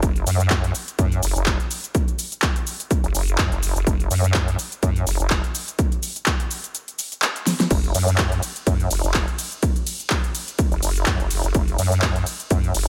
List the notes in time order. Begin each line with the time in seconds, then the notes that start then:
0.03 F#1, kick, closed hi-hat, shaker
0.16 closed hi-hat, shaker
0.27 F#2, open hi-hat, shaker
0.40 closed hi-hat, shaker
0.50 kick, clap, closed hi-hat, shaker
0.64 closed hi-hat, shaker
0.75 open hi-hat, shaker
0.88 closed hi-hat, shaker
0.99 F#2, kick, closed hi-hat, shaker
1.12 closed hi-hat, shaker
1.23 F#1, open hi-hat, shaker
1.36 F#1, closed hi-hat, shaker
1.46 kick, clap, closed hi-hat, shaker
1.60 closed hi-hat, shaker
1.71 open hi-hat, shaker
1.84 closed hi-hat, shaker
1.95 kick, closed hi-hat, shaker
2.08 closed hi-hat, shaker
2.19 open hi-hat, shaker
2.32 closed hi-hat, shaker
2.42 kick, clap, closed hi-hat, shaker
2.56 closed hi-hat, shaker
2.67 open hi-hat, shaker
2.80 closed hi-hat, shaker
2.91 kick, closed hi-hat, shaker
3.04 F#1, closed hi-hat, shaker
3.15 F#1, open hi-hat, shaker
3.28 closed hi-hat, shaker
3.38 F#2, kick, clap, closed hi-hat, shaker
3.52 F#1, closed hi-hat, shaker
3.63 open hi-hat, shaker
3.76 F#1, closed hi-hat, shaker
3.87 F#1, kick, closed hi-hat, shaker
4.00 closed hi-hat, shaker
4.11 F#2, open hi-hat, shaker
4.24 closed hi-hat, shaker
4.34 kick, clap, closed hi-hat, shaker
4.48 closed hi-hat, shaker
4.59 open hi-hat, shaker
4.72 closed hi-hat, shaker
4.83 F#2, kick, closed hi-hat, shaker
4.96 closed hi-hat, shaker
5.07 F#1, open hi-hat, shaker
5.20 F#1, closed hi-hat, shaker
5.30 kick, clap, closed hi-hat, shaker
5.44 closed hi-hat, shaker
5.55 open hi-hat, shaker
5.68 closed hi-hat, shaker
5.79 kick, closed hi-hat, shaker
5.92 closed hi-hat, shaker
6.03 open hi-hat, shaker
6.16 closed hi-hat, shaker
6.26 kick, clap, closed hi-hat, shaker
6.40 closed hi-hat, shaker
6.51 open hi-hat, shaker
6.64 closed hi-hat, shaker
6.75 closed hi-hat, shaker
6.88 closed hi-hat, shaker
6.99 open hi-hat, shaker
7.12 closed hi-hat, shaker
7.22 clap, closed hi-hat, shaker
7.36 closed hi-hat, shaker
7.47 snare, open hi-hat, shaker
7.60 snare, closed hi-hat, shaker
7.71 F#1, kick, closed hi-hat, ride, crash, shaker
7.84 closed hi-hat, shaker
7.95 F#2, open hi-hat, ride, shaker
8.08 closed hi-hat, shaker
8.18 kick, clap, closed hi-hat, ride, shaker
8.32 closed hi-hat, shaker
8.43 open hi-hat, ride, shaker
8.56 closed hi-hat, shaker
8.67 F#2, kick, closed hi-hat, ride, shaker
8.80 closed hi-hat, shaker
8.91 F#1, open hi-hat, ride, shaker
9.04 F#1, closed hi-hat, shaker
9.14 kick, clap, closed hi-hat, ride, shaker
9.28 closed hi-hat, shaker
9.39 open hi-hat, ride, shaker
9.52 closed hi-hat, shaker
9.63 kick, closed hi-hat, ride, shaker
9.76 closed hi-hat, shaker
9.87 open hi-hat, ride, shaker
10.00 closed hi-hat, shaker
10.10 kick, clap, closed hi-hat, ride, shaker
10.24 closed hi-hat, shaker
10.35 open hi-hat, ride, shaker
10.48 closed hi-hat, shaker
10.59 kick, closed hi-hat, ride, shaker
10.72 F#1, closed hi-hat, shaker
10.83 F#1, open hi-hat, ride, shaker
10.96 closed hi-hat, shaker
11.06 F#2, kick, clap, closed hi-hat, ride, shaker
11.20 F#1, closed hi-hat, shaker
11.31 open hi-hat, ride, shaker
11.44 F#1, closed hi-hat, shaker
11.55 F#1, kick, closed hi-hat, ride, shaker
11.68 closed hi-hat, shaker
11.79 F#2, open hi-hat, ride, shaker
11.92 closed hi-hat, shaker
12.02 kick, clap, closed hi-hat, ride, shaker
12.16 closed hi-hat, shaker
12.26 open hi-hat, ride, shaker
12.40 closed hi-hat, shaker
12.51 F#2, kick, closed hi-hat, ride, shaker
12.64 closed hi-hat, shaker
12.75 F#1, open hi-hat, ride, shaker